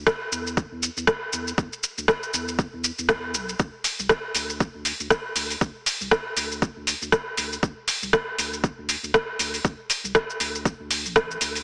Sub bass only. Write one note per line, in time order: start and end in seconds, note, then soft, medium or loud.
0.32 0.65 E2 medium
0.72 0.89 E2 loud
0.97 1.05 E2 medium
1.33 1.52 E2 medium
1.58 1.69 E2 loud
1.98 2.06 D2 loud
2.34 2.67 E2 medium
2.73 2.91 E2 medium
2.99 3.36 E2 medium
3.34 3.54 B1 medium
3.60 3.70 D2 loud
3.99 4.07 C2 loud
4.35 4.69 D2 medium
4.75 4.92 D2 medium
5.00 5.08 D2 medium
5.36 5.55 D2 medium
5.61 5.72 D2 loud
6.01 6.09 C2 medium
6.37 6.70 D2 medium
6.77 6.94 D2 medium
7.02 7.10 D2 medium
7.38 7.57 D2 medium
7.63 7.74 D2 loud
8.03 8.10 C2 loud
8.38 8.72 D2 medium
8.78 8.96 D2 loud
9.03 9.11 D2 medium
9.39 9.59 D2 medium
9.65 9.75 D2 loud
10.04 10.12 C2 loud
10.40 10.74 D2 medium
10.80 11.06 D2 loud
11.05 11.36 A1 medium
11.41 11.61 D2 medium